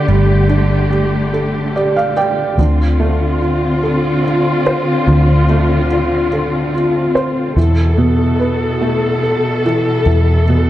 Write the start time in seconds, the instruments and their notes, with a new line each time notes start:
Already playing: string section D3 A3 G4, felt piano G4 A4 D5
0.08 fingered electric bass G1, felt piano G3
0.49 felt piano D4
0.91 felt piano G4
1.33 felt piano A4
1.76 felt piano G4 D5
1.96 felt piano F5
2.17 felt piano D5 G5
2.58 fingered electric bass D2, string section D3 C4 F4, felt piano D3
3.00 felt piano A3
3.41 felt piano F4
3.83 felt piano A4
4.25 felt piano F4
4.66 felt piano C5
5.08 fingered electric bass D2, felt piano D3
5.49 felt piano A3
5.92 felt piano F4
6.33 felt piano A4
6.74 felt piano F4
7.15 felt piano C5
7.56 fingered electric bass E2, string section B2 A4, felt piano E3
7.97 felt piano B2
8.39 felt piano B4
8.81 felt piano A3
9.23 felt piano A4
9.66 felt piano E3
10.06 fingered electric bass E2, felt piano E3
10.49 felt piano B2